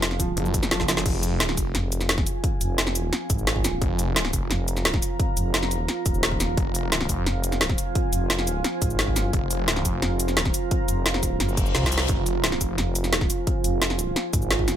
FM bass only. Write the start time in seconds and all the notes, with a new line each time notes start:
Already playing: F1
1.75 F1
2.61 F1
3.30 G#1
4.51 F1
5.37 F1
6.06 D#1
7.26 F1
8.13 F1
8.82 G#1
10.02 F1
10.89 F1
11.40 F#1
11.75 C2
12.78 F1
13.64 F1
14.33 G#1